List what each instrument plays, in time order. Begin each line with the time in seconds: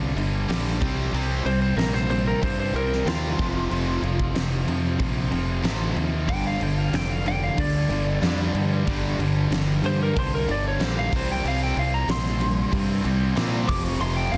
Already playing: fingered electric bass C2, distorted electric guitar G2 D3 G3
0.16 fingered electric bass G1, distorted electric guitar G2 D3 G3, crash
0.48 fingered electric bass A#1, distorted electric guitar G2 D3 G3, snare, crash
0.81 fingered electric bass C2, distorted electric guitar C3 G3 C4, kick, crash
1.12 fingered electric bass C2, distorted electric guitar C3 G3 C4, crash
1.45 fingered electric bass C2, distorted electric guitar C3 G3 C4, lead electric guitar C5, crash
1.62 lead electric guitar C5
1.76 fingered electric bass A#1, distorted electric guitar C3 G3 C4, lead electric guitar A#4, snare, crash
1.94 lead electric guitar C5, snare
2.10 distorted electric guitar C3 G3 C4, lead electric guitar C5, crash
2.27 lead electric guitar A#4
2.41 fingered electric bass G2, distorted electric guitar C3 G3 C4, lead electric guitar C5, kick, crash
2.60 lead electric guitar C5
2.74 fingered electric bass C2, distorted electric guitar C3 G3 C4, lead electric guitar A#4, crash
2.93 snare
3.05 fingered electric bass D#2, distorted electric guitar C3 G3 C4, lead electric guitar F4, snare, crash
3.39 fingered electric bass F1, distorted electric guitar F2 C3 F3, kick, crash
3.71 fingered electric bass F1, distorted electric guitar F2 C3 F3, crash
4.02 fingered electric bass F1, distorted electric guitar F2 C3 F3, crash
4.19 kick
4.34 fingered electric bass F1, distorted electric guitar F2 C3 F3, snare, crash
4.67 distorted electric guitar F2 C3 F3, fingered electric bass F2, crash
4.99 fingered electric bass A#1, distorted electric guitar F2 C3 F3, kick, crash
5.31 fingered electric bass F1, distorted electric guitar F2 C3 F3, crash
5.63 fingered electric bass A1, distorted electric guitar F2 C3 F3, snare, crash
5.96 fingered electric bass D#2, distorted electric guitar F2 C3 F3, crash
6.28 fingered electric bass G1, distorted electric guitar G2 D3 G3, lead electric guitar G5, kick, crash
6.47 lead electric guitar F5
6.60 fingered electric bass G1, distorted electric guitar G2 D3 G3, lead electric guitar G5, crash
6.78 lead electric guitar F5
6.93 fingered electric bass F1, distorted electric guitar G2 D3 G3, lead electric guitar G5, snare, crash
7.12 lead electric guitar F5
7.25 distorted electric guitar G2 D3 G3, lead electric guitar G5, crash
7.44 lead electric guitar F5
7.58 fingered electric bass D2, distorted electric guitar G2 D3 G3, lead electric guitar D5, kick, crash
7.88 fingered electric bass G1, distorted electric guitar G2 D3 G3, crash
8.22 fingered electric bass F2, distorted electric guitar G2 D3 G3, snare, crash
8.54 fingered electric bass G2, distorted electric guitar G2 D3 G3, crash
8.87 fingered electric bass G1, distorted electric guitar G2 D3 G3, kick, crash
9.19 fingered electric bass G1, distorted electric guitar G2 D3 G3, crash
9.50 fingered electric bass G1, distorted electric guitar G2 D3 G3, snare, crash
9.82 fingered electric bass G2, distorted electric guitar G2 D3 G3, lead electric guitar C5, crash
10.03 lead electric guitar A#4
10.16 fingered electric bass C2, distorted electric guitar G2 D3 G3, lead electric guitar C5, kick, crash
10.35 lead electric guitar A#4
10.48 fingered electric bass G1, distorted electric guitar G2 D3 G3, lead electric guitar D5, crash
10.68 lead electric guitar C#5
10.80 fingered electric bass A#1, distorted electric guitar G2 D3 G3, lead electric guitar C5, snare, crash
10.99 lead electric guitar F5
11.12 fingered electric bass C2, distorted electric guitar C3 G3 C4, lead electric guitar C5, kick, crash
11.32 lead electric guitar G5
11.43 fingered electric bass C2, distorted electric guitar C3 G3 C4, crash
11.48 lead electric guitar F5
11.63 lead electric guitar G5
11.76 fingered electric bass C2, distorted electric guitar C3 G3 C4, lead electric guitar F5, crash
11.94 lead electric guitar A#5
12.07 fingered electric bass A#1, distorted electric guitar C3 G3 C4, lead electric guitar C6, snare, crash
12.26 snare
12.41 distorted electric guitar C3 G3 C4, crash
12.72 fingered electric bass G2, distorted electric guitar C3 G3 C4, kick, crash
13.03 fingered electric bass C2, distorted electric guitar C3 G3 C4, crash
13.34 fingered electric bass A#2, distorted electric guitar C3 G3 C4, snare, crash
13.67 fingered electric bass F1, distorted electric guitar F2 C3 F3, lead electric guitar D6, kick, crash
13.84 lead electric guitar C#6
13.99 fingered electric bass F1, distorted electric guitar F2 C3 F3, lead electric guitar C6, crash
14.16 lead electric guitar G5
14.32 fingered electric bass F1, distorted electric guitar F2 C3 F3, lead electric guitar F5, crash